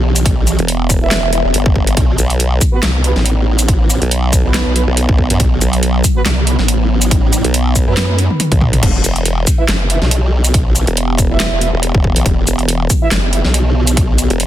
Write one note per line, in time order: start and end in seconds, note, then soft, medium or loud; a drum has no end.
0.00 0.57 B1 loud
0.00 1.93 E3 medium
0.00 8.79 B3 medium
0.00 1.93 G4 loud
0.16 closed hi-hat medium
0.16 shaker medium
0.26 kick loud
0.26 closed hi-hat medium
0.47 closed hi-hat soft
0.47 shaker medium
0.59 1.00 E1 loud
0.59 closed hi-hat soft
0.68 closed hi-hat medium
0.90 kick medium
0.90 closed hi-hat medium
0.90 shaker medium
1.02 1.43 E1 medium
1.02 1.30 E4 medium
1.02 1.30 B4 medium
1.02 1.30 E5 loud
1.11 snare loud
1.11 clap medium
1.11 closed hi-hat medium
1.33 1.39 E4 medium
1.33 1.39 B4 medium
1.33 1.39 E5 medium
1.33 closed hi-hat medium
1.45 1.53 E1 loud
1.54 1.96 G1 loud
1.54 closed hi-hat medium
1.66 kick loud
1.76 kick medium
1.87 closed hi-hat medium
1.97 2.17 B1 medium
1.97 8.79 F#3 medium
1.97 8.79 D#4 loud
1.97 kick loud
1.97 closed hi-hat medium
2.18 2.60 B1 loud
2.18 closed hi-hat medium
2.18 shaker medium
2.30 closed hi-hat soft
2.40 closed hi-hat medium
2.61 kick medium
2.61 closed hi-hat medium
2.61 shaker medium
2.73 2.78 B3 loud
2.73 2.78 F#4 medium
2.73 2.78 B4 loud
2.83 3.14 C2 loud
2.83 snare loud
2.83 clap medium
2.83 closed hi-hat medium
3.04 3.14 B3 medium
3.04 3.14 F#4 medium
3.04 3.14 B4 medium
3.04 closed hi-hat medium
3.16 4.00 A1 loud
3.16 snare soft
3.26 closed hi-hat medium
3.59 closed hi-hat medium
3.59 shaker medium
3.68 kick loud
3.68 closed hi-hat medium
3.90 closed hi-hat medium
3.90 shaker medium
4.02 4.43 B1 loud
4.02 closed hi-hat soft
4.11 closed hi-hat medium
4.33 kick medium
4.33 closed hi-hat medium
4.33 shaker medium
4.45 4.64 B1 loud
4.45 4.73 B3 medium
4.45 4.73 F#4 medium
4.45 4.73 B4 loud
4.54 snare loud
4.54 clap medium
4.54 closed hi-hat medium
4.66 4.86 B1 loud
4.76 4.82 B3 medium
4.76 4.82 F#4 medium
4.76 4.82 B4 loud
4.76 closed hi-hat medium
4.87 5.07 B1 medium
4.97 closed hi-hat medium
5.09 5.28 B1 loud
5.09 kick loud
5.18 kick medium
5.30 5.38 F#2 loud
5.30 closed hi-hat medium
5.40 5.60 B1 medium
5.40 kick loud
5.40 closed hi-hat medium
5.61 6.03 B1 loud
5.61 closed hi-hat medium
5.61 shaker medium
5.73 closed hi-hat soft
5.83 closed hi-hat medium
6.04 kick medium
6.04 closed hi-hat medium
6.04 shaker medium
6.16 6.21 B3 loud
6.16 6.21 F#4 loud
6.16 6.21 B4 loud
6.26 6.57 C2 loud
6.26 snare loud
6.26 clap medium
6.26 closed hi-hat medium
6.47 6.56 B3 medium
6.47 6.56 F#4 medium
6.47 6.56 B4 medium
6.47 closed hi-hat medium
6.59 7.43 A1 loud
6.59 snare soft
6.68 closed hi-hat medium
7.02 closed hi-hat medium
7.02 shaker medium
7.11 kick loud
7.11 closed hi-hat medium
7.33 closed hi-hat medium
7.33 shaker medium
7.44 7.86 B1 loud
7.44 closed hi-hat soft
7.54 closed hi-hat medium
7.76 kick medium
7.76 closed hi-hat medium
7.76 shaker medium
7.87 8.28 F#2 loud
7.87 8.16 B3 medium
7.87 8.16 F#4 medium
7.87 8.16 B4 loud
7.97 snare loud
7.97 clap medium
7.97 closed hi-hat medium
7.97 high tom medium
8.09 high tom medium
8.19 closed hi-hat medium
8.30 mid tom medium
8.40 closed hi-hat medium
8.40 mid tom medium
8.52 8.81 B1 loud
8.52 kick loud
8.52 closed hi-hat soft
8.52 mid tom medium
8.61 kick medium
8.61 mid tom loud
8.73 closed hi-hat medium
8.73 mid tom medium
8.83 9.03 E1 loud
8.83 14.46 E3 medium
8.83 14.46 B3 medium
8.83 14.46 G4 loud
8.83 kick loud
8.83 closed hi-hat medium
8.83 crash medium
9.04 9.45 E1 loud
9.04 closed hi-hat medium
9.04 shaker medium
9.16 closed hi-hat soft
9.26 closed hi-hat medium
9.47 kick medium
9.47 closed hi-hat medium
9.47 shaker medium
9.59 9.64 E4 loud
9.59 9.64 B4 medium
9.59 9.64 E5 loud
9.68 10.00 F#1 medium
9.68 snare loud
9.68 clap medium
9.68 closed hi-hat medium
9.90 9.99 E4 medium
9.90 9.99 B4 medium
9.90 9.99 E5 medium
9.90 closed hi-hat medium
10.02 10.86 B1 loud
10.02 snare soft
10.11 closed hi-hat medium
10.45 closed hi-hat medium
10.45 shaker medium
10.54 kick loud
10.54 closed hi-hat medium
10.76 closed hi-hat medium
10.76 shaker medium
10.87 11.28 E1 loud
10.87 closed hi-hat soft
10.97 closed hi-hat medium
11.18 kick medium
11.18 closed hi-hat medium
11.18 shaker medium
11.30 11.50 E1 loud
11.30 11.59 E4 medium
11.30 11.59 B4 medium
11.30 11.59 E5 loud
11.40 snare loud
11.40 clap medium
11.40 closed hi-hat medium
11.52 11.71 E1 loud
11.61 11.67 E4 medium
11.61 11.67 B4 medium
11.61 11.67 E5 loud
11.61 closed hi-hat medium
11.73 11.93 E1 loud
11.83 closed hi-hat medium
11.95 12.14 E1 loud
11.95 kick loud
12.04 kick medium
12.16 12.24 B1 loud
12.16 closed hi-hat medium
12.26 12.46 E1 loud
12.26 kick loud
12.26 closed hi-hat medium
12.47 12.88 E1 loud
12.47 closed hi-hat soft
12.47 shaker soft
12.59 closed hi-hat soft
12.69 closed hi-hat medium
12.90 kick medium
12.90 closed hi-hat medium
12.90 shaker medium
13.02 13.07 E4 loud
13.02 13.07 B4 loud
13.02 13.07 E5 loud
13.11 13.43 F#1 loud
13.11 snare loud
13.11 clap medium
13.11 closed hi-hat medium
13.33 13.42 E4 medium
13.33 13.42 B4 medium
13.33 13.42 E5 medium
13.33 closed hi-hat medium
13.44 14.28 B1 medium
13.44 snare soft
13.54 closed hi-hat medium
13.87 closed hi-hat medium
13.87 shaker medium
13.97 kick loud
13.97 closed hi-hat medium
14.18 closed hi-hat medium
14.18 shaker medium
14.30 14.46 E1 loud
14.30 closed hi-hat soft
14.40 closed hi-hat medium